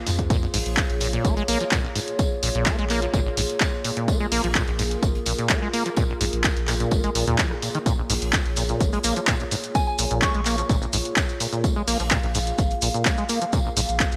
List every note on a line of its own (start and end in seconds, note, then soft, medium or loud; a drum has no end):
0.00 14.16 A#3 medium
0.00 14.16 F4 medium
0.00 14.16 G#4 medium
0.00 0.29 C5 medium
0.07 0.47 F2 medium
0.07 0.11 G#2 loud
0.07 open hi-hat medium
0.07 tambourine medium
0.19 kick medium
0.19 closed hi-hat soft
0.30 0.37 A#2 loud
0.30 4.07 C#5 medium
0.30 kick loud
0.30 closed hi-hat medium
0.30 tambourine medium
0.42 0.46 A#1 loud
0.54 0.61 A#1 loud
0.54 0.58 G#2 loud
0.54 open hi-hat loud
0.54 open hi-hat medium
0.66 0.80 A#1 medium
0.66 closed hi-hat soft
0.77 kick loud
0.77 snare loud
0.77 clap loud
0.77 closed hi-hat medium
0.77 tambourine medium
0.89 1.18 A#1 loud
0.89 snare soft
0.89 closed hi-hat soft
1.00 1.08 A#2 medium
1.00 open hi-hat medium
1.00 tambourine medium
1.13 1.26 A#2 medium
1.13 closed hi-hat medium
1.25 1.40 G#1 medium
1.25 1.35 A#3 loud
1.25 kick loud
1.25 closed hi-hat medium
1.25 tambourine medium
1.36 1.43 G#3 loud
1.36 closed hi-hat soft
1.48 1.56 A#1 medium
1.48 1.58 A#3 loud
1.48 open hi-hat loud
1.48 tambourine medium
1.60 1.64 F3 medium
1.60 closed hi-hat soft
1.72 1.79 A#2 loud
1.72 kick loud
1.72 snare loud
1.72 clap loud
1.72 closed hi-hat medium
1.72 tambourine medium
1.84 1.88 A#1 loud
1.96 2.00 G#2 loud
1.96 open hi-hat medium
1.96 tambourine medium
2.08 closed hi-hat soft
2.19 kick loud
2.19 closed hi-hat medium
2.19 tambourine medium
2.43 2.50 A#1 loud
2.43 2.50 A#2 medium
2.43 open hi-hat loud
2.43 tambourine medium
2.55 2.69 A#1 medium
2.55 2.68 A#2 medium
2.55 closed hi-hat medium
2.66 2.76 A#3 loud
2.66 kick loud
2.66 snare loud
2.66 clap loud
2.66 closed hi-hat medium
2.66 tambourine medium
2.79 3.07 A#1 loud
2.79 2.85 G#3 loud
2.79 closed hi-hat soft
2.90 3.00 A#3 loud
2.90 clap soft
2.90 open hi-hat medium
2.90 tambourine medium
3.02 3.06 F3 medium
3.02 closed hi-hat medium
3.14 3.29 G#1 medium
3.14 3.20 A#2 loud
3.14 kick loud
3.14 closed hi-hat medium
3.14 tambourine medium
3.26 3.30 A#1 loud
3.37 3.45 A#1 medium
3.37 3.41 G#2 loud
3.37 open hi-hat loud
3.37 tambourine medium
3.50 closed hi-hat soft
3.60 kick loud
3.60 snare loud
3.60 clap loud
3.60 closed hi-hat medium
3.60 tambourine medium
3.84 3.91 A#2 medium
3.84 open hi-hat medium
3.84 tambourine medium
3.97 4.10 A#2 medium
3.97 closed hi-hat medium
4.08 4.18 A#3 loud
4.08 7.85 A#4 medium
4.08 kick loud
4.08 closed hi-hat medium
4.08 tambourine medium
4.20 4.27 G#3 loud
4.32 4.39 A#1 medium
4.32 4.42 A#3 loud
4.32 open hi-hat loud
4.32 open hi-hat medium
4.44 4.58 A#1 medium
4.44 4.48 F3 medium
4.44 closed hi-hat medium
4.55 4.62 A#2 loud
4.55 kick loud
4.55 snare loud
4.55 clap loud
4.55 closed hi-hat medium
4.55 tambourine medium
4.67 4.71 A#1 loud
4.67 4.96 A#1 loud
4.67 snare soft
4.67 closed hi-hat soft
4.79 4.83 G#2 loud
4.79 open hi-hat medium
4.79 tambourine medium
4.91 closed hi-hat medium
5.03 5.18 G#1 medium
5.03 kick loud
5.03 closed hi-hat medium
5.03 tambourine medium
5.15 closed hi-hat soft
5.26 5.34 A#1 medium
5.26 5.33 A#2 medium
5.26 open hi-hat loud
5.26 tambourine medium
5.38 5.51 A#2 medium
5.38 closed hi-hat medium
5.49 5.60 A#3 loud
5.49 kick loud
5.49 snare loud
5.49 clap loud
5.49 closed hi-hat medium
5.49 tambourine medium
5.62 5.68 G#3 loud
5.73 5.84 A#3 loud
5.73 open hi-hat medium
5.73 tambourine medium
5.86 5.89 F3 medium
5.86 closed hi-hat medium
5.96 6.04 A#2 loud
5.96 kick loud
5.96 closed hi-hat medium
5.96 tambourine medium
6.09 6.13 A#1 loud
6.21 6.28 A#1 loud
6.21 6.25 G#2 loud
6.21 open hi-hat medium
6.21 tambourine medium
6.33 6.47 A#1 medium
6.33 closed hi-hat medium
6.44 kick loud
6.44 snare loud
6.44 clap loud
6.44 closed hi-hat medium
6.44 tambourine medium
6.57 6.85 A#1 loud
6.57 closed hi-hat soft
6.68 6.75 A#2 medium
6.68 cross-stick medium
6.68 clap soft
6.68 open hi-hat medium
6.68 tambourine medium
6.80 6.93 A#2 medium
6.80 closed hi-hat medium
6.91 7.07 G#1 medium
6.91 7.02 A#3 loud
6.91 kick loud
6.91 closed hi-hat medium
6.91 tambourine medium
7.04 7.10 G#3 loud
7.04 closed hi-hat soft
7.15 7.23 A#1 medium
7.15 7.25 A#2 medium
7.15 open hi-hat loud
7.15 tambourine medium
7.27 7.34 D#2 medium
7.27 7.40 A#2 loud
7.27 closed hi-hat medium
7.38 7.53 F3 loud
7.38 kick loud
7.38 snare loud
7.38 clap loud
7.38 closed hi-hat medium
7.38 tambourine medium
7.51 7.55 D#3 medium
7.51 cross-stick medium
7.62 7.69 A#2 medium
7.62 open hi-hat medium
7.62 tambourine medium
7.75 7.78 D#3 loud
7.75 closed hi-hat medium
7.86 7.93 A#2 loud
7.86 11.63 C#5 medium
7.86 kick loud
7.86 closed hi-hat medium
7.86 tambourine medium
7.86 maracas soft
7.98 8.02 A#1 loud
8.10 8.17 A#1 loud
8.10 8.14 G#2 loud
8.10 open hi-hat loud
8.10 open hi-hat medium
8.10 maracas medium
8.22 8.36 A#1 medium
8.22 closed hi-hat medium
8.22 maracas soft
8.33 kick loud
8.33 snare loud
8.33 clap loud
8.33 closed hi-hat medium
8.33 tambourine medium
8.33 maracas soft
8.45 8.74 A#1 loud
8.45 snare soft
8.45 closed hi-hat soft
8.56 8.64 A#2 medium
8.56 open hi-hat medium
8.56 tambourine medium
8.56 maracas medium
8.69 8.82 A#2 medium
8.69 closed hi-hat medium
8.69 maracas soft
8.80 8.95 G#1 medium
8.80 8.91 A#3 loud
8.80 kick loud
8.80 closed hi-hat medium
8.80 tambourine medium
8.80 maracas medium
8.93 8.99 G#3 loud
8.93 closed hi-hat soft
8.93 maracas soft
9.03 9.12 A#1 medium
9.03 9.14 A#3 loud
9.03 open hi-hat loud
9.03 tambourine medium
9.03 maracas medium
9.16 9.20 F3 medium
9.16 closed hi-hat medium
9.16 maracas soft
9.27 9.35 A#2 loud
9.27 kick loud
9.27 snare loud
9.27 clap loud
9.27 closed hi-hat medium
9.27 tambourine medium
9.27 maracas soft
9.40 9.44 A#1 loud
9.40 maracas soft
9.51 9.55 G#2 loud
9.51 open hi-hat medium
9.51 tambourine medium
9.51 maracas medium
9.64 closed hi-hat medium
9.64 maracas soft
9.75 9.83 G#5 medium
9.75 kick loud
9.75 closed hi-hat medium
9.75 tambourine medium
9.75 maracas soft
9.87 9.95 G#5 medium
9.98 10.06 A#1 loud
9.98 10.05 A#2 medium
9.98 open hi-hat loud
9.98 tambourine medium
9.98 maracas medium
10.10 10.25 A#1 medium
10.10 10.24 A#2 medium
10.10 closed hi-hat soft
10.10 maracas soft
10.22 10.32 A#3 loud
10.22 10.58 C#6 medium
10.22 kick loud
10.22 snare loud
10.22 clap loud
10.22 closed hi-hat medium
10.22 tambourine medium
10.22 maracas medium
10.34 10.63 A#1 loud
10.34 10.41 G#3 loud
10.34 closed hi-hat soft
10.45 10.56 A#3 loud
10.45 clap soft
10.45 open hi-hat medium
10.45 tambourine medium
10.45 maracas medium
10.58 10.62 F3 medium
10.58 closed hi-hat medium
10.58 maracas soft
10.69 10.84 G#1 medium
10.69 10.76 A#2 loud
10.69 kick loud
10.69 closed hi-hat medium
10.69 tambourine medium
10.69 maracas soft
10.82 10.86 A#1 loud
10.82 maracas soft
10.93 11.01 A#1 medium
10.93 10.97 G#2 loud
10.93 open hi-hat loud
10.93 tambourine medium
10.93 maracas medium
11.05 closed hi-hat medium
11.05 maracas soft
11.16 kick loud
11.16 snare loud
11.16 clap loud
11.16 closed hi-hat medium
11.16 tambourine medium
11.16 maracas medium
11.29 maracas soft
11.40 11.47 A#2 medium
11.40 open hi-hat loud
11.40 tambourine medium
11.40 maracas medium
11.53 11.65 A#2 medium
11.53 closed hi-hat medium
11.53 maracas soft
11.64 11.74 A#3 loud
11.64 14.16 F5 medium
11.64 kick loud
11.64 closed hi-hat medium
11.64 tambourine medium
11.64 maracas medium
11.76 11.83 G#3 loud
11.87 11.95 A#1 loud
11.87 11.98 A#3 loud
11.87 open hi-hat medium
11.87 open hi-hat loud
11.87 maracas loud
11.99 12.14 A#1 medium
11.99 12.04 F3 medium
11.99 closed hi-hat medium
11.99 maracas soft
12.11 12.18 A#2 loud
12.11 kick loud
12.11 snare loud
12.11 clap loud
12.11 closed hi-hat medium
12.11 tambourine medium
12.11 maracas soft
12.23 12.27 A#1 loud
12.23 12.52 A#1 loud
12.23 snare soft
12.23 closed hi-hat soft
12.35 12.39 G#2 loud
12.35 open hi-hat medium
12.35 tambourine medium
12.35 maracas medium
12.47 closed hi-hat medium
12.47 maracas soft
12.58 12.73 G#1 medium
12.58 kick loud
12.58 closed hi-hat medium
12.58 tambourine medium
12.58 maracas medium
12.71 closed hi-hat soft
12.71 maracas soft
12.82 12.90 A#1 medium
12.82 12.89 A#2 medium
12.82 open hi-hat loud
12.82 tambourine medium
12.82 maracas medium
12.94 13.07 A#2 medium
12.94 closed hi-hat soft
12.94 maracas soft
13.05 13.16 A#3 loud
13.05 kick loud
13.05 snare loud
13.05 clap loud
13.05 closed hi-hat medium
13.05 tambourine medium
13.05 maracas medium
13.17 13.24 G#3 loud
13.17 maracas soft
13.29 13.39 A#3 loud
13.29 open hi-hat loud
13.29 tambourine medium
13.29 maracas medium
13.41 13.45 F3 medium
13.41 closed hi-hat medium
13.41 maracas soft
13.53 13.60 A#2 loud
13.53 kick loud
13.53 closed hi-hat medium
13.53 tambourine medium
13.53 maracas medium
13.65 13.69 A#1 loud
13.77 13.84 A#1 loud
13.77 13.81 G#2 loud
13.77 open hi-hat loud
13.77 tambourine medium
13.77 maracas medium
13.89 14.03 A#1 medium
13.89 closed hi-hat soft
13.89 maracas soft
14.00 kick loud
14.00 snare loud
14.00 clap loud
14.00 closed hi-hat medium
14.00 tambourine medium
14.00 maracas medium
14.12 14.16 A#1 loud
14.12 closed hi-hat soft
14.12 maracas soft